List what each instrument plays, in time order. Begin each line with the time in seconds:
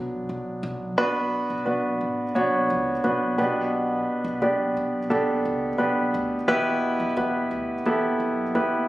Already playing: upright bass B1, grand piano F#3 B3 D4
0.29 upright bass B1
0.63 upright bass B1
0.98 grand piano B3 D4 F#4 B4
1.50 upright bass B1
1.66 upright bass B1, grand piano B3 D4 F#4 B4
2.01 upright bass A1
2.35 upright bass B1, grand piano B3 D4 F#4 C#5
2.70 upright bass C#2
3.04 upright bass B1, grand piano B3 D4 F#4 B4
3.38 upright bass B1, grand piano B2 B3 D4 G4 B4
4.24 upright bass B1
4.42 upright bass B1, grand piano B3 D4 G4 D5
4.77 upright bass B1
5.10 upright bass B1, grand piano B3 D4 G4 A4
5.45 upright bass C#2
5.78 upright bass B1, grand piano B3 D4 G4 B4
6.14 upright bass D2
6.48 upright bass E2, grand piano B2 B3 E4 G4 B4
7.00 upright bass E2
7.17 upright bass E2, grand piano B3 E4 G4 B4
7.51 upright bass D2
7.85 upright bass E2, grand piano B3 E4 G4 A4
8.20 upright bass F#2
8.55 upright bass E2, grand piano B3 E4 G4 B4